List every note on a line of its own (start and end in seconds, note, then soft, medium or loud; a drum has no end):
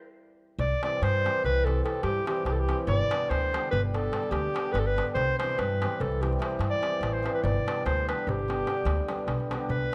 0.59 0.73 C2 loud
0.59 0.81 D5 loud
0.59 darbuka dum medium
0.82 1.24 E3 medium
0.82 1.24 G3 medium
0.82 0.97 C4 medium
0.82 0.97 E4 medium
0.82 0.97 G4 medium
0.82 1.04 D5 loud
0.82 darbuka tek medium
0.93 darbuka tek soft
1.02 1.27 G2 medium
1.02 1.44 C5 loud
1.02 darbuka tek medium
1.14 darbuka tek soft
1.25 1.65 E3 medium
1.25 1.65 G3 medium
1.25 1.39 C4 medium
1.25 1.40 E4 medium
1.25 1.40 G4 medium
1.25 darbuka tek medium
1.36 darbuka tek soft
1.44 1.80 C2 medium
1.44 1.67 B4 loud
1.44 darbuka dum medium
1.57 darbuka tek soft
1.65 1.83 E3 medium
1.65 1.84 G3 medium
1.65 1.80 C4 medium
1.65 1.80 E4 medium
1.65 1.80 G4 medium
1.65 1.84 A4 loud
1.65 darbuka tek medium
1.76 darbuka tek soft
1.84 2.24 E3 medium
1.84 2.25 G3 medium
1.84 1.98 C4 medium
1.84 1.99 E4 medium
1.84 1.99 G4 medium
1.84 2.02 A4 loud
1.84 darbuka tek medium
1.94 darbuka tek soft
2.03 2.17 G2 loud
2.03 2.25 G4 loud
2.03 darbuka tek medium
2.26 2.67 E3 medium
2.26 2.67 G3 medium
2.26 2.40 C4 medium
2.26 2.41 E4 medium
2.26 2.41 G4 medium
2.26 2.45 G4 loud
2.26 darbuka tek medium
2.37 darbuka tek soft
2.45 2.71 C2 medium
2.45 2.54 G4 loud
2.45 darbuka tek medium
2.52 2.61 A4 medium
2.60 2.78 G4 loud
2.68 2.93 E3 medium
2.68 2.93 G3 medium
2.68 2.83 C4 medium
2.68 2.83 E4 medium
2.68 2.83 G4 medium
2.68 darbuka tek medium
2.79 darbuka tek soft
2.87 3.01 G1 loud
2.87 3.31 D5 loud
2.87 darbuka dum medium
3.11 3.52 D3 medium
3.11 3.52 G3 medium
3.11 3.26 B3 medium
3.11 3.26 D4 medium
3.11 3.26 G4 medium
3.11 darbuka tek loud
3.21 darbuka tek soft
3.30 3.56 D2 medium
3.30 3.70 C5 loud
3.30 darbuka tek medium
3.42 darbuka tek soft
3.53 3.93 D3 medium
3.53 3.93 G3 medium
3.53 3.68 B3 medium
3.53 3.68 D4 medium
3.53 3.68 G4 medium
3.53 darbuka tek medium
3.64 darbuka tek soft
3.71 4.08 G1 loud
3.71 3.81 B4 loud
3.71 darbuka dum medium
3.94 4.11 D3 medium
3.94 4.11 G3 medium
3.94 4.08 B3 medium
3.94 4.08 D4 medium
3.94 4.09 G4 medium
3.94 4.32 A4 loud
3.94 darbuka tek medium
4.04 darbuka tek soft
4.12 4.53 D3 medium
4.12 4.53 G3 medium
4.12 4.26 B3 medium
4.12 4.27 D4 medium
4.12 4.27 G4 medium
4.12 darbuka tek medium
4.23 darbuka tek soft
4.31 4.45 D2 loud
4.31 4.74 G4 loud
4.31 darbuka tek medium
4.54 4.95 D3 medium
4.54 4.95 G3 medium
4.54 4.69 B3 medium
4.54 4.69 D4 medium
4.54 4.69 G4 medium
4.54 darbuka tek medium
4.66 darbuka tek soft
4.72 4.99 G1 medium
4.72 4.81 B4 loud
4.72 darbuka tek medium
4.79 4.88 A4 medium
4.87 5.06 B4 loud
4.96 5.21 D3 medium
4.96 5.21 G3 medium
4.96 5.11 B3 medium
4.96 5.11 D4 medium
4.96 5.11 G4 medium
4.96 darbuka tek medium
5.07 darbuka tek soft
5.15 5.29 C2 loud
5.15 5.37 C5 loud
5.15 darbuka dum loud
5.38 5.80 E3 medium
5.38 5.81 G3 medium
5.38 5.53 C4 medium
5.38 5.54 E4 medium
5.38 5.54 G4 medium
5.38 5.60 C5 loud
5.38 darbuka tek medium
5.50 darbuka tek soft
5.58 5.84 G2 loud
5.58 6.02 B4 loud
5.58 darbuka tek medium
5.71 darbuka tek soft
5.81 6.20 E3 medium
5.81 6.20 G3 medium
5.81 5.96 C4 medium
5.81 5.96 E4 medium
5.81 5.96 G4 medium
5.81 darbuka tek medium
5.92 darbuka tek soft
6.00 6.35 C2 medium
6.00 6.23 A4 loud
6.00 darbuka dum medium
6.12 darbuka tek soft
6.21 6.38 E3 medium
6.21 6.38 G3 medium
6.21 6.35 C4 medium
6.21 6.36 E4 medium
6.21 6.31 G4 medium
6.21 6.36 G4 medium
6.21 darbuka tek medium
6.33 darbuka tek soft
6.39 6.79 E3 medium
6.39 6.80 G3 medium
6.39 6.53 C4 medium
6.39 6.54 E4 medium
6.39 6.54 G4 medium
6.39 darbuka tek medium
6.50 darbuka tek soft
6.59 6.73 G2 medium
6.59 darbuka tek medium
6.70 7.14 D5 loud
6.81 7.21 E3 medium
6.81 7.22 G3 medium
6.81 6.96 C4 medium
6.81 6.96 E4 medium
6.81 6.96 G4 medium
6.81 darbuka tek medium
6.94 darbuka tek soft
7.01 7.26 A1 medium
7.01 darbuka tek medium
7.13 7.33 C5 medium
7.22 7.48 E3 medium
7.22 7.48 G3 medium
7.22 7.38 C4 medium
7.22 7.38 E4 medium
7.22 7.38 G4 medium
7.22 darbuka tek medium
7.34 7.44 B4 medium
7.34 darbuka tek soft
7.43 7.57 G1 loud
7.43 7.85 D5 loud
7.43 darbuka dum loud
7.56 darbuka tek soft
7.66 8.07 D3 medium
7.66 8.07 G3 medium
7.66 7.80 B3 medium
7.66 7.81 D4 medium
7.66 7.81 G4 medium
7.66 darbuka tek loud
7.77 darbuka tek soft
7.85 8.11 D2 loud
7.85 8.07 C5 loud
7.85 darbuka tek medium
7.98 darbuka tek soft
8.08 8.47 D3 medium
8.08 8.47 G3 medium
8.08 8.22 B3 medium
8.08 8.23 D4 medium
8.08 8.23 G4 medium
8.08 8.30 B4 medium
8.08 darbuka tek medium
8.19 darbuka tek soft
8.27 8.62 G1 medium
8.27 9.28 G4 loud
8.27 darbuka dum medium
8.39 darbuka tek soft
8.48 8.66 D3 medium
8.48 8.67 G3 medium
8.48 8.62 B3 medium
8.48 8.62 D4 medium
8.48 8.62 G4 medium
8.48 darbuka tek medium
8.67 9.07 D3 medium
8.67 9.08 G3 medium
8.67 8.81 B3 medium
8.67 8.81 D4 medium
8.67 8.81 G4 medium
8.67 darbuka tek medium
8.77 darbuka tek soft
8.85 8.99 D2 loud
8.85 darbuka tek medium
8.97 darbuka tek soft
9.09 9.50 D3 medium
9.09 9.50 G3 medium
9.09 9.23 B3 medium
9.09 9.23 D4 medium
9.09 9.23 G4 medium
9.09 darbuka tek medium
9.19 darbuka tek soft
9.27 9.52 B1 medium
9.27 darbuka tek medium
9.27 darbuka dum medium
9.40 darbuka tek soft
9.51 9.74 D3 medium
9.51 9.74 G3 medium
9.51 9.65 B3 medium
9.51 9.65 D4 medium
9.51 9.65 G4 medium
9.51 darbuka tek medium
9.69 9.83 C2 medium
9.69 9.95 B4 loud
9.69 darbuka dum medium